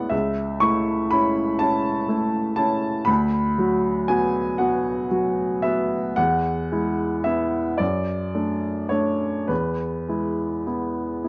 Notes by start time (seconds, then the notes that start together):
Already playing: G#3 B3 E4 B4 D5 F#5
0.10 C#2 E5
0.60 A3 E4 C#6
1.11 C#4 E4 B5
1.59 C#4 E4 A5
2.08 A3 E4
2.56 C#4 E4 A5
3.05 D2 B5
3.58 F#3 F#4
4.08 B3 F#4 G#5
4.58 B3 F#4 F#5
5.11 F#3 F#4
5.62 B3 F#4 E5
6.16 E2 F#5
6.72 G#3 E4
7.24 B3 E4 E5
7.78 F#2 D5
8.35 A3 D4
8.89 A3 D4 C#5
9.48 E2 B4
10.09 G#3 E4
10.67 B3 E4
11.24 B3 E4